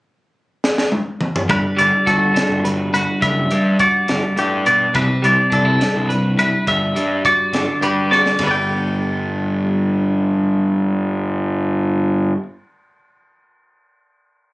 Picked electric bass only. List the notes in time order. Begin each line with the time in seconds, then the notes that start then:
1.49 G1
1.79 G1
2.08 G1
2.50 G1
2.65 G1
2.94 G1
3.22 F#1
3.52 G2
4.10 G1
4.38 G2
4.95 C2
5.23 C2
5.52 C2
5.96 C2
6.11 C2
6.39 C2
6.68 G1
6.97 G2
7.53 G1
7.81 G2
8.40 G1